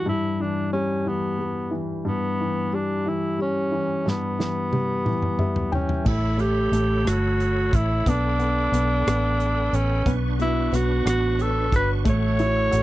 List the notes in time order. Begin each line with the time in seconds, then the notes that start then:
Already playing: G2 E3 G3
0.06 G2 E4
0.40 E3 D4
0.73 G3 C#4
1.06 E3 B3
1.39 G3
1.71 E3
2.05 G2 B3
2.40 E3
2.73 G3 D4
3.06 E3 E4
3.39 G3 C#4
3.72 E3
4.06 G2 B3, snare
4.39 E3, snare
4.72 G3, high tom
5.05 E3, mid tom
5.22 mid tom
5.39 G3 E5, mid tom
5.56 floor tom
5.72 E3 C#4 G5, floor tom
5.89 floor tom
6.05 A1 A3 E4 A4 C#5 B5, kick, crash
6.37 A3 G4, closed hi-hat
6.72 A1 A3, cross-stick, closed hi-hat
7.05 G1 A3 F#4, cross-stick, closed hi-hat
7.40 closed hi-hat
7.73 A1 E4, kick, closed hi-hat
8.06 B1 B3 D4 G5, kick, closed hi-hat
8.39 B3, closed hi-hat
8.72 B1 B3, closed hi-hat
9.07 A1 B3, cross-stick, closed hi-hat
9.40 closed hi-hat
9.73 A1 C#4, closed hi-hat
10.06 B1 B3 D4 B4 C#6, kick, closed hi-hat
10.39 B3 E4 F#4, closed hi-hat
10.72 B1 B3 F#4 C#5, cross-stick, closed hi-hat
11.05 A1 B3 F#4, cross-stick, closed hi-hat
11.39 A4 C#5, closed hi-hat
11.72 G1 F#4, kick, closed hi-hat
11.76 B4
12.05 A1 A3 A4 F#5, kick, closed hi-hat
12.10 C#5
12.39 E4 F#4, closed hi-hat
12.71 A1 F#4 C#5, closed hi-hat